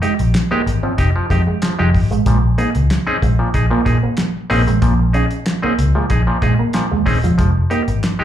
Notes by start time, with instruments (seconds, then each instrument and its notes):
0.02 clean electric guitar G#3, clav D#4 G4, closed hi-hat
0.19 picked electric bass A#1, closed hi-hat
0.34 snare, clap, closed hi-hat
0.51 clav G#3 D#4 G4, clean electric guitar A#3, muted picked electric bass stroke
0.66 picked electric bass G#1, muted clean electric guitar stroke, closed hi-hat
0.83 clav F3, clean electric guitar C4
0.98 picked electric bass F1, clav D#4 G4, muted clean electric guitar stroke, kick, closed hi-hat
1.16 clav F3
1.30 picked electric bass F2, clean electric guitar G#3, clav D#4 G4, kick, closed hi-hat
1.47 clean electric guitar G#3
1.62 clav F3, snare, clap, closed hi-hat
1.79 picked electric bass F1, clean electric guitar F3, clav G#3 D#4 G4
1.94 picked electric bass G#1, clav D#4 G4, muted clean electric guitar stroke, kick, open hi-hat
2.11 picked electric bass A1, clean electric guitar G#3, closed hi-hat
2.26 picked electric bass A#1, clav A#2 F3, clean electric guitar G#3, kick, closed hi-hat
2.58 clean electric guitar A#3, clav D#4 G#4, closed hi-hat
2.75 picked electric bass C#2, muted clean electric guitar stroke, closed hi-hat
2.90 snare, clap, closed hi-hat
3.07 clav C4 C#4 D#4 G#4, muted picked electric bass stroke
3.22 picked electric bass A#1, clean electric guitar G#3, kick, closed hi-hat
3.39 clav A#2 F3
3.54 picked electric bass A#1, clav D#4 G#4, kick, closed hi-hat
3.70 clav A#2 F3, clean electric guitar A#3
3.85 picked electric bass A#2, clav D#4 G#4, muted clean electric guitar stroke, kick, closed hi-hat
4.03 clean electric guitar A#3
4.17 muted clean electric guitar stroke, snare, clap, closed hi-hat
4.50 picked electric bass A#1, clean electric guitar A#3, clav C4 C#4 D#4 G#4, open hi-hat
4.67 picked electric bass A1, clean electric guitar G#3, closed hi-hat
4.82 picked electric bass A#1, clav A#2 F3, clean electric guitar A#3, kick, closed hi-hat
4.99 muted clean electric guitar stroke
5.13 clean electric guitar C#4, clav D#4 G#4, closed hi-hat
5.31 closed hi-hat
5.46 snare, clap, closed hi-hat
5.62 clean electric guitar A#3, clav C4 C#4 D#4 G#4, muted picked electric bass stroke
5.79 picked electric bass C#2, muted clean electric guitar stroke, closed hi-hat
5.95 clav A#2 F3, clean electric guitar G#3
6.10 picked electric bass A#1, clav D#4 G#4, muted clean electric guitar stroke, kick, closed hi-hat
6.27 clav A#2 F3
6.42 picked electric bass A#2, clean electric guitar G#3, clav D#4 G#4, kick, closed hi-hat
6.59 clean electric guitar A#3
6.73 clav A#2 F3, snare, clap, closed hi-hat
6.91 picked electric bass D#2, clean electric guitar G#3
7.06 picked electric bass D#1, clav C4 C#4 D#4 G#4, muted clean electric guitar stroke, kick, open hi-hat
7.23 picked electric bass E1, clean electric guitar F3, clav D#4 G#4, closed hi-hat
7.38 picked electric bass F1, clav F3, clean electric guitar G#3, kick, closed hi-hat
7.70 clean electric guitar A#3, clav D#4 G4, closed hi-hat
7.88 picked electric bass G#1, muted clean electric guitar stroke, closed hi-hat
8.03 snare, clap, closed hi-hat
8.19 clav G#3 D#4 G4, muted picked electric bass stroke